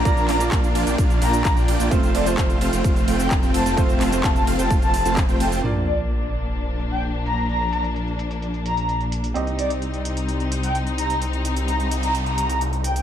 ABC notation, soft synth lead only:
X:1
M:4/4
L:1/16
Q:1/4=129
K:Bb
V:1 name="Soft synth lead"
b2 b z6 z b3 z3 | z2 d z8 g z2 a2 | z4 a a z a z a3 z2 g g | z2 d z8 g z2 b2 |
b2 b z6 z b3 z3 | z2 d z8 g z2 b2 | z4 b b z b z b3 z2 g g |]